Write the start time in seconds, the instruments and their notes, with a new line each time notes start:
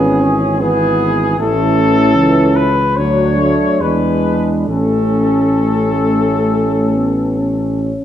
Already playing: tuba G#1, euphonium E3, trombone B3, french horn section C#4, trumpet section G#4
0.22 trombone C#4
0.60 euphonium E3, trombone B3, french horn section B3, trumpet section G#4
1.38 tuba A1, euphonium E3, trombone A3, french horn section C#4, trumpet section A4
2.17 tuba C#2, trombone E3
2.56 trumpet section B4
2.97 tuba D2, euphonium F#3, trombone F#3, french horn section D4, trumpet section C#5
3.40 trombone A3
3.81 tuba E2, euphonium G#3, trombone G#3, french horn section D4, trumpet section B4
4.69 tuba A1, euphonium A3, french horn section C#4, trombone C#4, trumpet section A4
5.60 euphonium A3
6.96 euphonium B3
7.40 euphonium C#4